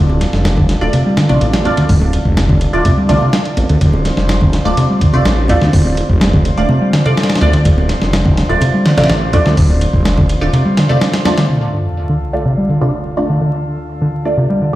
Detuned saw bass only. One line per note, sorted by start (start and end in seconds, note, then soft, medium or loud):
0.00 0.26 D1 loud
0.33 0.74 F1 medium
0.82 0.89 D1 medium
1.30 1.39 A1 soft
1.41 1.70 A1 medium
1.78 1.85 D2 medium
1.89 2.18 D1 loud
2.25 2.66 F1 medium
2.74 2.81 D1 medium
3.10 3.17 C2 medium
3.58 3.65 A1 loud
3.70 3.77 D2 medium
3.81 4.10 D1 loud
4.18 4.58 F1 medium
4.66 4.73 D1 loud
5.14 5.23 A1 soft
5.26 5.54 A1 medium
5.62 5.69 D2 medium
5.73 6.02 D1 loud
6.10 6.50 F1 medium
6.58 6.65 D1 loud
7.42 7.57 D2 loud
7.66 7.94 D1 loud
8.02 8.42 F1 medium
8.50 8.57 D1 medium
8.98 9.07 A1 soft
9.10 9.38 A1 medium
9.46 9.53 D2 medium
9.58 9.86 D1 loud
9.94 10.34 F1 medium
10.42 10.49 D1 loud